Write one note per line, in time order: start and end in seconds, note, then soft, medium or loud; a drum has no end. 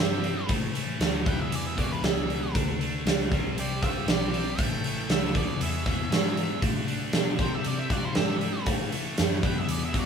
0.00 0.47 G2 medium
0.00 0.21 C3 medium
0.00 0.22 G3 medium
0.00 0.22 C4 medium
0.00 0.47 G4 medium
0.00 0.49 E5 medium
0.22 0.47 C3 medium
0.22 0.47 G3 medium
0.22 0.47 C4 medium
0.22 open hi-hat soft
0.47 0.72 A2 medium
0.47 0.99 A2 medium
0.47 0.73 E3 medium
0.47 0.74 A3 loud
0.47 kick medium
0.47 open hi-hat medium
0.74 0.98 A2 medium
0.74 0.99 E3 medium
0.74 0.98 A3 medium
0.74 open hi-hat soft
0.99 1.51 D2 medium
0.99 1.24 A2 medium
0.99 1.24 E3 loud
0.99 1.24 A3 medium
0.99 snare medium
0.99 open hi-hat medium
1.24 1.47 E2 medium
1.24 1.48 B2 medium
1.24 1.48 E3 medium
1.24 kick medium
1.24 open hi-hat soft
1.28 1.39 B4 medium
1.28 1.40 G5 medium
1.40 1.53 G#4 medium
1.40 1.55 E5 medium
1.48 1.74 E2 medium
1.48 2.02 E2 medium
1.48 1.75 B2 medium
1.48 1.75 E3 medium
1.48 open hi-hat medium
1.54 1.66 G#4 medium
1.54 1.66 D5 medium
1.67 1.79 G#4 medium
1.67 1.78 E5 medium
1.75 2.01 E2 medium
1.75 2.02 B2 loud
1.75 2.02 E3 medium
1.75 1.91 D5 medium
1.75 kick medium
1.75 open hi-hat soft
1.81 1.92 F#4 medium
1.92 2.04 D4 medium
1.92 2.04 B4 medium
2.02 2.53 C#2 medium
2.02 2.26 E2 medium
2.02 2.27 B2 medium
2.02 2.27 E3 medium
2.02 2.53 E5 medium
2.02 snare loud
2.02 open hi-hat medium
2.06 2.53 G#4 medium
2.27 2.52 E2 medium
2.27 2.53 B2 medium
2.27 2.53 E3 medium
2.27 open hi-hat soft
2.54 3.05 D2 medium
2.54 2.79 D3 medium
2.54 2.79 A3 medium
2.54 2.80 D4 medium
2.54 kick loud
2.54 open hi-hat medium
2.80 3.04 D3 medium
2.80 3.04 A3 medium
2.80 3.05 D4 loud
2.80 open hi-hat soft
3.05 3.56 C#2 medium
3.05 3.30 D3 medium
3.05 3.30 A3 loud
3.05 3.30 D4 loud
3.05 snare loud
3.05 open hi-hat medium
3.32 3.55 C3 medium
3.32 3.55 G3 medium
3.32 3.57 C4 medium
3.32 kick medium
3.32 open hi-hat soft
3.56 4.06 C2 medium
3.56 3.80 C3 medium
3.56 3.81 G3 medium
3.56 3.81 C4 medium
3.56 3.82 G4 medium
3.56 3.85 D5 medium
3.56 open hi-hat medium
3.81 4.06 C3 medium
3.81 4.07 G3 loud
3.81 4.07 C4 loud
3.81 4.10 G4 medium
3.81 4.09 E5 medium
3.81 kick medium
3.81 open hi-hat soft
4.07 4.57 B1 medium
4.07 4.31 C3 medium
4.07 4.31 G3 medium
4.07 4.32 C4 medium
4.07 4.57 G4 medium
4.07 snare loud
4.07 open hi-hat medium
4.11 4.61 D5 medium
4.32 4.57 C3 medium
4.32 4.57 G3 medium
4.32 4.58 C4 loud
4.32 open hi-hat soft
4.58 5.08 A1 medium
4.58 4.83 A2 medium
4.58 4.84 E3 medium
4.58 4.84 A3 medium
4.58 5.10 G5 medium
4.58 kick loud
4.58 open hi-hat medium
4.64 5.13 A4 medium
4.84 5.07 A2 medium
4.84 5.07 E3 medium
4.84 5.07 A3 medium
4.84 open hi-hat soft
5.08 5.60 C#2 medium
5.08 5.33 A2 medium
5.08 5.33 E3 loud
5.08 5.33 A3 loud
5.08 5.36 E5 medium
5.08 snare loud
5.08 open hi-hat medium
5.14 5.36 A4 medium
5.33 5.59 E2 medium
5.33 5.60 B2 medium
5.33 5.60 E3 medium
5.33 5.61 D5 medium
5.33 kick medium
5.33 open hi-hat soft
5.38 5.60 G#4 medium
5.60 5.84 E2 medium
5.60 6.10 E2 medium
5.60 5.84 B2 medium
5.60 5.84 E3 medium
5.60 6.59 G#4 medium
5.60 6.61 E5 medium
5.60 open hi-hat medium
5.85 6.09 E2 medium
5.85 6.10 B2 medium
5.85 6.11 E3 loud
5.85 kick medium
5.85 open hi-hat medium
6.10 6.35 E2 medium
6.10 6.61 G#2 medium
6.10 6.36 B2 medium
6.10 6.36 E3 medium
6.10 snare medium
6.10 open hi-hat medium
6.36 6.61 E2 medium
6.36 6.60 B2 medium
6.36 6.61 E3 medium
6.36 open hi-hat soft
6.61 7.12 A2 medium
6.61 6.86 D3 medium
6.61 6.87 A3 medium
6.61 6.86 D4 medium
6.61 kick medium
6.61 open hi-hat medium
6.87 7.12 D3 medium
6.87 7.13 A3 medium
6.87 7.13 D4 medium
6.87 open hi-hat soft
7.13 7.63 B2 loud
7.13 7.38 D3 medium
7.13 7.38 A3 medium
7.13 7.38 D4 medium
7.13 snare loud
7.13 open hi-hat medium
7.39 7.63 C3 medium
7.39 7.64 G3 medium
7.39 7.64 C4 medium
7.39 7.52 C5 medium
7.39 7.54 G5 medium
7.39 kick medium
7.39 open hi-hat soft
7.53 7.63 G4 medium
7.53 7.67 E5 medium
7.64 7.88 C3 medium
7.64 7.90 C3 medium
7.64 7.89 G3 medium
7.64 7.89 C4 medium
7.64 7.75 G4 medium
7.64 7.79 D5 medium
7.64 open hi-hat medium
7.76 7.92 G4 medium
7.76 7.92 E5 medium
7.89 8.14 C3 medium
7.89 8.15 G3 loud
7.89 8.15 C4 medium
7.89 8.04 F#4 medium
7.89 8.04 D5 medium
7.89 muted picked electric bass stroke soft
7.89 kick medium
7.89 open hi-hat medium
8.04 8.16 E4 medium
8.04 8.17 C5 medium
8.15 8.66 G#2 medium
8.15 8.40 C3 medium
8.15 8.40 G3 medium
8.15 8.41 C4 medium
8.15 8.65 G4 medium
8.15 8.65 E5 medium
8.15 snare medium
8.15 open hi-hat medium
8.41 8.65 C3 medium
8.41 8.65 G3 medium
8.41 8.66 C4 medium
8.41 open hi-hat soft
8.65 8.91 A2 medium
8.65 8.91 E3 medium
8.65 8.92 A3 medium
8.65 kick loud
8.65 open hi-hat medium
8.92 9.15 A2 medium
8.92 9.16 E3 medium
8.92 9.16 A3 medium
8.92 muted picked electric bass stroke soft
8.92 open hi-hat soft
9.16 9.68 F#2 medium
9.16 9.41 A2 medium
9.16 9.42 E3 medium
9.16 9.42 A3 loud
9.16 snare loud
9.16 open hi-hat medium
9.43 9.66 E2 medium
9.43 9.67 B2 medium
9.43 9.68 E3 medium
9.43 9.56 B4 medium
9.43 9.57 G5 medium
9.43 kick medium
9.43 open hi-hat soft
9.58 9.70 G#4 medium
9.58 9.71 E5 medium
9.68 9.92 E2 medium
9.68 10.06 E2 medium
9.68 9.92 B2 medium
9.68 9.94 E3 medium
9.68 9.82 D5 medium
9.68 open hi-hat medium
9.72 9.83 G#4 medium
9.85 9.96 G#4 medium
9.85 9.96 E5 medium
9.93 10.06 E2 medium
9.93 10.06 B2 medium
9.93 10.06 E3 loud
9.93 kick medium
9.93 open hi-hat medium
9.98 10.06 F#4 medium
9.98 10.06 D5 medium